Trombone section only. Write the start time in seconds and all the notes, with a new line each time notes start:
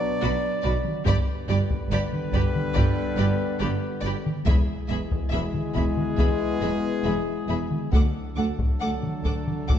Already playing: B2 F#3
1.07 D3 G3
4.45 B2 G#3
7.92 D3 F#3